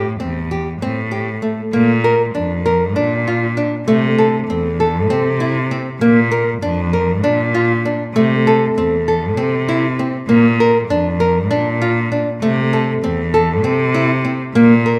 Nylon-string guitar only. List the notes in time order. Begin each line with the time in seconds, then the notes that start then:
0.20 C4
0.51 G4
0.82 C4
1.11 G4
1.42 A3
1.73 A#3
2.04 A#4
2.35 D4
2.66 A#4
2.96 D4
3.27 F4
3.57 D4
3.88 A3
4.18 A4
4.50 C4
4.80 A4
5.10 C4
5.40 E4
5.71 C4
6.01 A#3
6.31 A#4
6.62 D4
6.93 A#4
7.24 D4
7.54 F4
7.85 D4
8.16 A3
8.47 A4
8.78 C4
9.08 A4
9.37 C4
9.68 E4
9.99 C4
10.29 A#3
10.60 A#4
10.90 D4
11.20 A#4
11.51 D4
11.81 F4
12.12 D4
12.42 A3
12.73 A4
13.04 C4
13.34 A4
13.64 C4
13.94 E4
14.25 C4
14.55 A#3
14.86 A#4